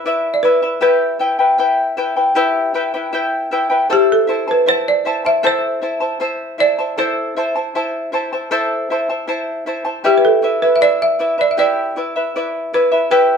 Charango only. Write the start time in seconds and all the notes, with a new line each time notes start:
0.06 E4 B4 D5 E5
0.44 E4 B4 D5 E5
0.62 E4 B4 E5
0.81 E4 G4 B4 E5 G5
1.19 E4 B4 E5 G5
1.39 E4 B4 G5
1.58 E4 B4 E5 G5
1.97 E4 B4 E5 G5
2.16 E4 B4 G5
2.35 E4 G4 B4 E5 G5
2.74 E4 B4 E5 G5
2.94 E4 B4 G5
3.13 E4 B4 E5 G5
3.51 E4 B4 E5 G5
3.70 E4 B4 G5
3.89 E4 A4 C5 E5 A5
4.27 E4 C5 E5 A5
4.48 E4 C5 A5
4.66 E4 C5 E5 A5
5.05 E4 C5 E5 A5
5.25 E4 C5 A5
5.43 E4 A4 C5 E5 A5
5.82 E4 C5 E5 A5
6.00 E4 C5 A5
6.20 E4 C5 E5 A5
6.58 E4 C5 E5 A5
6.79 E4 C5 A5
6.97 E4 A4 C5 E5 A5
7.36 E4 C5 E5 A5
7.56 E4 C5 A5
7.75 E4 C5 E5 A5
8.12 E4 C5 E5 A5
8.33 E4 C5 A5
8.51 E4 A4 C5 E5 A5
8.90 E4 C5 E5 A5
9.10 E4 C5 A5
9.27 E4 C5 E5 A5
9.66 E4 C5 E5 A5
9.85 E4 C5 A5
10.04 E4 G4 B4 D5 E5
10.42 E4 B4 D5 E5
10.62 E4 B4 E5
10.81 E4 B4 D5 E5
11.19 E4 B4 D5 E5
11.38 E4 B4 E5
11.57 E4 G4 B4 D5 E5
11.96 E4 B4 D5 E5
12.16 E4 B4 E5
12.36 E4 B4 D5 E5
12.73 E4 B4 D5 E5
12.92 E4 B4 E5
13.11 E4 G4 B4 E5 G5